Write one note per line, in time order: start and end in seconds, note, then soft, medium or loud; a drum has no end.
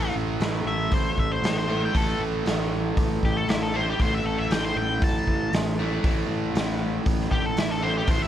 0.00 0.11 A1 medium
0.00 1.70 A2 medium
0.00 1.69 E3 medium
0.00 1.68 A3 medium
0.00 0.14 A4 medium
0.14 0.37 A1 medium
0.40 0.63 A1 medium
0.40 snare loud
0.40 open hi-hat medium
0.65 0.88 A1 medium
0.65 0.92 E5 medium
0.91 1.14 A1 medium
0.91 1.18 C5 medium
0.91 kick loud
0.91 open hi-hat medium
1.18 1.40 A1 medium
1.18 1.31 E5 medium
1.18 kick medium
1.32 1.56 C5 medium
1.42 1.87 A1 medium
1.42 snare loud
1.42 open hi-hat medium
1.58 1.82 C5 medium
1.68 1.93 A2 medium
1.68 1.95 E3 medium
1.68 1.95 A3 medium
1.85 1.96 G5 medium
1.94 2.17 A1 medium
1.94 3.77 A2 medium
1.94 3.75 E3 medium
1.94 3.74 A3 medium
1.94 2.21 A4 medium
1.94 kick loud
1.94 open hi-hat medium
2.19 2.42 A1 medium
2.46 2.90 A1 medium
2.46 snare loud
2.46 open hi-hat soft
2.97 3.19 A1 medium
2.97 kick loud
2.97 open hi-hat medium
3.23 3.45 A1 medium
3.23 3.37 G4 medium
3.23 kick medium
3.37 3.49 A4 medium
3.48 3.93 A1 medium
3.48 3.61 E4 medium
3.48 snare loud
3.48 open hi-hat medium
3.62 3.76 A4 medium
3.74 4.00 A2 medium
3.74 4.01 E3 medium
3.74 4.02 A3 medium
3.74 3.88 C5 medium
3.90 4.01 G4 medium
3.99 4.22 A1 medium
3.99 5.81 A2 medium
3.99 5.80 E3 medium
3.99 5.79 A3 loud
3.99 4.13 C5 medium
3.99 kick loud
3.99 open hi-hat medium
4.14 4.26 E5 medium
4.25 4.47 A1 medium
4.25 4.38 A4 medium
4.38 4.51 E5 medium
4.50 4.73 A1 medium
4.50 4.64 G5 medium
4.50 snare loud
4.50 open hi-hat medium
4.64 4.77 C5 medium
4.76 4.99 A1 medium
4.76 5.02 G5 medium
5.02 5.24 A1 medium
5.02 5.53 A5 medium
5.02 kick loud
5.02 open hi-hat medium
5.27 5.50 A1 medium
5.27 kick medium
5.53 5.98 A1 medium
5.53 snare loud
5.53 open hi-hat medium
5.79 6.04 A2 medium
5.79 6.05 E3 medium
5.79 6.05 A3 medium
6.04 6.26 A1 medium
6.04 7.84 A2 medium
6.04 7.83 E3 medium
6.04 7.82 A3 medium
6.04 kick loud
6.04 open hi-hat medium
6.29 6.51 A1 medium
6.54 6.99 A1 medium
6.54 snare loud
6.54 open hi-hat medium
7.06 7.28 A1 medium
7.06 kick loud
7.06 open hi-hat medium
7.20 snare soft
7.31 7.54 A1 medium
7.31 7.44 G4 medium
7.31 kick medium
7.46 7.58 A4 medium
7.56 8.01 A1 medium
7.56 7.70 E4 medium
7.56 snare loud
7.56 open hi-hat medium
7.71 7.83 A4 medium
7.82 8.08 A2 medium
7.82 8.09 E3 medium
7.82 8.10 A3 medium
7.82 7.95 C5 medium
7.98 8.09 G4 medium
8.07 8.28 A1 medium
8.07 8.28 A2 medium
8.07 8.28 E3 medium
8.07 8.28 A3 medium
8.07 8.22 C5 medium
8.07 kick loud
8.07 open hi-hat medium
8.22 8.28 E5 medium